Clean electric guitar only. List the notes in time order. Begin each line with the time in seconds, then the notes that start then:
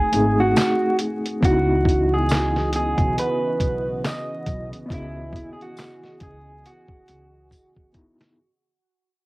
Already playing: G#4
0.40 F#4
1.45 F#4
2.14 G#4
2.76 G#4
3.19 B4
4.07 D#5
4.94 E4
5.53 G#4
5.62 F#4
6.23 G#4
6.66 F#4